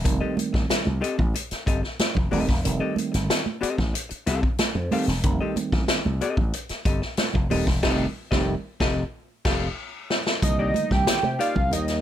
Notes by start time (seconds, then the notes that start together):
0.04 F1 D#3 G3 A3 C4, muted hollow-body jazz guitar stroke, kick, closed hi-hat, muted conga
0.20 C4 G4 A4 D#5
0.37 muted hollow-body jazz guitar stroke, closed hi-hat, muted conga, high conga
0.53 A1, muted hollow-body jazz guitar stroke, kick, snare
0.70 muted slap bass stroke, snare, closed hi-hat, muted conga
0.85 C2, muted hollow-body jazz guitar stroke, high conga
1.01 C4 G4 A4 D#5, closed hi-hat, muted conga
1.18 A1, muted hollow-body jazz guitar stroke, kick, low conga
1.34 muted hollow-body jazz guitar stroke, closed hi-hat, muted conga
1.51 muted slap bass stroke, snare, closed hi-hat
1.66 G1 C4 G4 A4 D#5, kick, closed hi-hat, muted conga
1.83 muted hollow-body jazz guitar stroke, snare
1.99 snare, closed hi-hat, muted conga, high conga
2.15 F1, muted hollow-body jazz guitar stroke, kick, low conga
2.31 D#1 D#3 G3 A3 C4 G4 A4 D#5, open hi-hat, muted conga, high conga
2.48 E1, muted hollow-body jazz guitar stroke, kick, snare
2.64 F1 D#3 G3 A3 C4, muted hollow-body jazz guitar stroke, closed hi-hat, muted conga
2.80 C4 G4 A4 D#5
2.96 muted hollow-body jazz guitar stroke, closed hi-hat, muted conga, high conga
3.12 G1, muted hollow-body jazz guitar stroke, snare, closed hi-hat
3.30 snare, closed hi-hat
3.45 muted hollow-body jazz guitar stroke, high conga
3.61 C4 G4 A4 D#5, muted slap bass stroke, closed hi-hat, muted conga
3.77 A1, muted hollow-body jazz guitar stroke, kick, snare, low conga
3.94 muted hollow-body jazz guitar stroke, closed hi-hat
4.09 muted hollow-body jazz guitar stroke, muted slap bass stroke, closed hi-hat
4.26 C2 C4 G4 A4 F5, snare, closed hi-hat, muted conga
4.42 muted hollow-body jazz guitar stroke, kick
4.58 snare, closed hi-hat, muted conga, high conga
4.75 F2, muted hollow-body jazz guitar stroke, low conga
4.91 D#3 G3 A3 C4 G4 A4 F5, open hi-hat, muted conga, high conga
5.08 E1, muted hollow-body jazz guitar stroke, snare
5.23 F1 D#3 G3 A3 C4, muted hollow-body jazz guitar stroke, kick, closed hi-hat, muted conga
5.40 C4 G4 A4 D#5
5.56 muted hollow-body jazz guitar stroke, closed hi-hat, muted conga, high conga
5.72 A1, muted hollow-body jazz guitar stroke, kick, snare
5.88 muted slap bass stroke, snare, closed hi-hat, muted conga
6.05 C2, muted hollow-body jazz guitar stroke, high conga
6.21 C4 G4 A4 D#5, closed hi-hat, muted conga
6.37 A1, muted hollow-body jazz guitar stroke, kick, low conga
6.53 muted hollow-body jazz guitar stroke, closed hi-hat
6.69 muted slap bass stroke, snare, closed hi-hat
6.85 G1 C4 G4 A4 D#5, kick, closed hi-hat
7.02 muted hollow-body jazz guitar stroke, snare
7.17 snare, closed hi-hat, high conga
7.34 F1, muted hollow-body jazz guitar stroke, kick, low conga
7.50 D#1 D#3 G3 A3 C4 G4 A4 D#5, open hi-hat, muted conga, high conga
7.67 E1, muted hollow-body jazz guitar stroke, kick, snare
7.83 F1 D#3 G3 A3 C4 G4 A4 D#5, kick, snare, crash
8.31 F1 D#3 G3 A3 C4 G4 A4 D#5, kick, snare
8.80 F1 C4 G4 A4 D#5, kick, snare
9.45 F1 C4 G4 A4 F5, kick, snare, crash
10.10 snare
10.27 snare
10.42 C2 D3 G3 A#3 D#5, muted hollow-body jazz guitar stroke, kick, closed hi-hat, low conga
10.49 D#3
10.59 A#3 D#4 G4 D5
10.74 muted hollow-body jazz guitar stroke, closed hi-hat, muted conga, high conga
10.91 C2 G5, muted hollow-body jazz guitar stroke, kick, snare, high conga
11.07 muted slap bass stroke, snare, closed hi-hat, tambourine, muted conga
11.23 C3, muted hollow-body jazz guitar stroke, high conga
11.39 A#3 D#4 G4 D5 F5, closed hi-hat, muted conga
11.56 C2, muted hollow-body jazz guitar stroke, kick, low conga
11.70 D#2 D#3 G3 A#3 D#4 D#5, muted hollow-body jazz guitar stroke, closed hi-hat, muted conga
11.88 snare, closed hi-hat